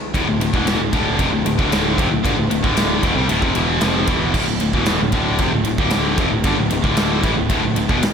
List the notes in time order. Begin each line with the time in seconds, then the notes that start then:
0.14 D1 D2 A2, kick, ride
0.27 D1 D2 A2
0.40 D1 D2 A2, ride
0.53 E1 E2 B2 E3, kick
0.67 snare, ride
0.79 D1 D2 A2
0.93 D1 D2 A2 D3, kick, ride
1.18 F1 F2 C3, kick, ride
1.32 D1 D2 A2
1.45 D1 D2 A2, ride
1.58 D1 D2 A2 D3, kick
1.72 snare, ride
1.98 F1 F2 C3, kick, ride
2.11 D1 D2 A2
2.24 G1 G2 D3, kick, ride
2.37 D1 D2 A2
2.50 D1 D2 A2, ride
2.62 D1 D2 A2 D3, kick
2.77 snare, ride
3.03 E1 E2 B2, kick, ride
3.16 C2 C3 G3
3.28 D1 D2 A2, ride
3.41 F1 F2 C3, kick
3.55 E1 E2 B2 E3, ride
3.81 F1 F2 C3 F3, snare, ride
4.07 E1 E2 B2 E3, kick, ride
4.34 D1 D2 A2, kick, crash
4.47 D1 D2 A2
4.60 D1 D2 A2, ride
4.73 E1 E2 B2 E3, kick
4.86 snare, ride
5.01 D1 D2 A2
5.12 D1 D2 A2 D3, kick, ride
5.38 F1 F2 C3, kick, ride
5.53 D1 D2 A2
5.65 D1 D2 A2, ride
5.78 D1 D2 A2 D3, kick
5.90 snare, ride
6.18 F1 F2 C3, kick, ride
6.32 D1 D2 A2
6.44 G1 G2 D3, kick, ride
6.58 D1 D2 A2
6.70 D1 D2 A2, ride
6.84 D1 D2 A2 D3, kick
6.97 snare, ride
7.23 A1 A2 E3, kick, ride
7.37 D1 D2 A2
7.49 D1 D2 A2, kick, ride
7.63 D1 D2 A2
7.75 D1 D2 A2, ride
7.89 E1 E2 B2, kick
8.03 snare, ride